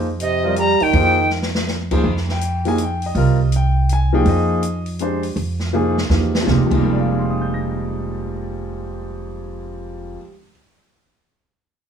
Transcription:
Already playing: F2
0.20 C3 D#5, closed hi-hat
0.43 G3 C4 F4 A#4 D5
0.56 G3 A#5, closed hi-hat
0.80 D#3 G5, muted upright bass stroke, open hi-hat
0.93 F2 F3 A#3 D#4 G#4 C5, open hi-hat
1.30 snare
1.42 snare
1.55 snare
1.67 snare
1.91 F3 A#3 D#4 G#4 C5, kick, crash
2.04 F2
2.17 snare
2.29 G5, snare
2.41 closed hi-hat
2.65 F3 A#3 D#4 G#4 G#5, open hi-hat
2.78 closed hi-hat
2.83 G5
3.02 open hi-hat
3.06 D#5
3.15 C2 G3 C4 F4 A#4, open hi-hat
3.52 closed hi-hat
3.56 G5
3.89 G#5, closed hi-hat
4.13 F3 A#3 D#4 G#4 G5
4.25 F2 D#5, open hi-hat
4.63 closed hi-hat
4.86 open hi-hat
4.99 G#3 D4 G4 C5, closed hi-hat
5.23 open hi-hat
5.36 F2, open hi-hat
5.60 snare
5.73 F3 A#3 D#4 G#4, mid tom
5.98 snare
6.09 E2 F3 A#3 D#4 G4, snare
6.35 snare
6.41 F2 F3
6.46 F1 G#3 A#3, kick, snare
6.51 D#4 G4
6.65 F2 F3
6.70 F1 G#3 A#3, kick, crash
6.75 G3 D#4
6.85 A#4
6.92 D5
7.00 F5
7.09 G#5
7.19 C6
7.30 D#6
7.42 G6
7.54 A#6

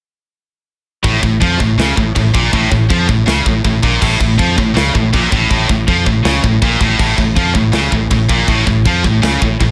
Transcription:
1.04 A1 A2, kick, china
1.23 A1 A2, kick
1.41 F2 F3, kick, china
1.60 A1 A2, kick
1.77 C#2 C#3, snare, china
1.96 A1 A2, kick
2.16 A1 A2, kick, china
2.34 A#1 A#2, kick
2.53 A1 A2, kick, china
2.71 A1 A2, kick
2.90 F2 F3, kick, china
3.08 A1 A2, kick
3.27 C#2 C#3, snare, china
3.46 A1 A2, kick
3.64 A1 A2, kick, china
3.83 A#1 A#2, kick
4.01 A1 A2, kick, crash, china
4.20 A1 A2, kick
4.38 F2 F3, kick, china
4.58 A1 A2, kick
4.75 C#2 C#3, snare, china
4.95 A1 A2, kick
5.13 A#1 A#2, kick, china
5.32 A1 A2, kick
5.51 A1 A2, kick, china
5.69 A1 A2, kick
5.88 F2 F3, kick, china
6.06 A1 A2, kick
6.25 C#2 C#3, snare, china
6.44 A1 A2, kick
6.62 A#1 A#2, kick, china
6.81 A1 A2, kick
6.99 A1 A2, kick, china, crash
7.18 A1 A2, kick
7.36 F2 F3, kick, china
7.55 A1 A2, kick
7.73 C#2 C#3, snare, china
7.92 A1 A2, kick
8.11 A1 A2, kick, china
8.29 A#1 A#2, kick
8.48 A1 A2, kick, china
8.67 A1 A2, kick
8.85 F2 F3, kick, china
9.04 A1 A2, kick
9.22 C#2 C#3, snare, china
9.42 A1 A2, kick
9.60 A1 A2, kick, china

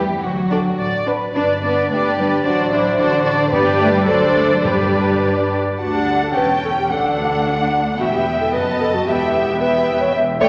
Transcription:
Already playing: E2 G4
0.08 E3
0.22 D2 F#3 F#4
0.51 D4 A4 D5
0.79 A1 D5
1.07 D4 B4
1.35 G1 D4 B4 D5
1.63 B3 D4 B4 D5
1.91 G1 A3 D4 G4 B4 D5
2.18 G3 D4 B4 D5
2.44 A1 F#3 D4 F#4 C5 D5
2.71 D4 E4 C5 D5
2.98 A1 D3 D4 F#4 C5 D5
3.24 D4 F#4 C5 D5
3.51 G1 G2 B3 D4 G4 B4 D5
3.66 G3
3.79 A3
3.93 G3
4.06 D2 F#3 D4 A4 C5 D5
4.21 G3
4.36 A3
4.51 F#3
4.63 G2 G3 D4 G4 B4 D5
5.79 D2 D4 F#4 F#5 A5
5.93 G4
6.23 A4
6.34 E1 E2 C#4 B4 G5 A5
6.63 A4 G5
6.78 G4
6.90 D2 D4 A4 F#5
7.99 E1 E2 B3 F#4 E5 G5
8.13 G4
8.41 A4
8.53 F#1 F#2 B3 B4 D#5 A5
8.81 A4
8.94 F#4
9.07 E1 E2 B3 G4 E5 G5
9.60 B3 B4 E5 G5
10.00 C#5
10.14 E1 E2 E5
10.40 A3 C#5 D5 G5

